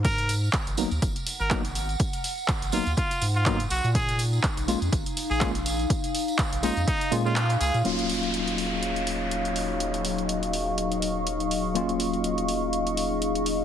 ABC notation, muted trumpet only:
X:1
M:4/4
L:1/16
Q:"Swing 16ths" 1/4=123
K:Ebm
V:1 name="Muted trumpet"
B2 z8 z B z4 | z6 F z F2 z F2 z G z | A2 z8 z A z4 | z6 E z E2 z F2 z A z |
z16 | z16 | z16 |]